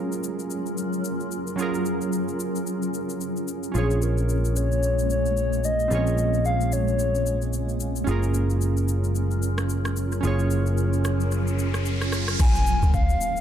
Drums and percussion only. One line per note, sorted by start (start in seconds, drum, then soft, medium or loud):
0.12 shaker medium
0.24 shaker loud
0.39 shaker medium
0.50 shaker medium
0.66 shaker medium
0.78 shaker medium
0.93 shaker medium
1.04 shaker medium
1.20 shaker soft
1.31 shaker medium
1.47 shaker medium
1.59 shaker medium
1.74 shaker medium
1.86 shaker medium
2.01 shaker soft
2.13 shaker medium
2.28 shaker medium
2.40 shaker loud
2.56 shaker medium
2.67 shaker medium
2.82 shaker medium
2.94 shaker medium
3.09 shaker medium
3.21 shaker medium
3.37 shaker soft
3.48 shaker medium
3.63 shaker medium
3.75 shaker medium
3.91 shaker medium
4.02 shaker medium
4.18 shaker soft
4.29 shaker medium
4.45 shaker medium
4.56 shaker loud
4.72 shaker medium
4.83 shaker medium
4.99 shaker medium
5.10 shaker medium
5.26 shaker soft
5.37 shaker medium
5.53 shaker soft
5.64 shaker medium
5.79 shaker medium
5.91 shaker medium
6.07 shaker medium
6.18 shaker medium
6.34 shaker soft
6.45 shaker medium
6.61 shaker medium
6.72 shaker loud
6.88 shaker medium
6.99 shaker medium
7.15 shaker medium
7.26 shaker medium
7.42 shaker medium
7.53 shaker medium
7.69 shaker soft
7.80 shaker medium
7.96 shaker medium
8.07 shaker medium
8.23 shaker medium
8.34 shaker medium
8.50 shaker soft
8.61 shaker medium
8.77 shaker medium
8.88 shaker loud
9.04 shaker medium
9.15 shaker medium
9.31 shaker medium
9.42 shaker medium
9.58 cross-stick loud
9.58 shaker medium
9.69 shaker medium
9.85 cross-stick medium
9.85 shaker soft
9.96 shaker medium
10.12 shaker medium
10.23 shaker medium
10.39 shaker medium
10.50 shaker medium
10.66 shaker soft
10.77 shaker medium
10.93 shaker medium
11.05 cross-stick medium
11.05 shaker loud
11.20 shaker medium
11.31 shaker medium
11.47 shaker medium
11.59 shaker medium
11.74 cross-stick medium
11.74 shaker medium
11.86 shaker medium
12.01 cross-stick medium
12.01 shaker soft
12.12 cross-stick medium
12.12 shaker medium
12.28 cross-stick medium
12.28 shaker medium
12.40 kick loud
12.40 crash loud
12.40 shaker medium
12.55 shaker medium
12.67 shaker medium
12.82 shaker medium
12.94 kick loud
12.94 shaker medium
13.09 shaker medium
13.21 shaker loud
13.37 shaker medium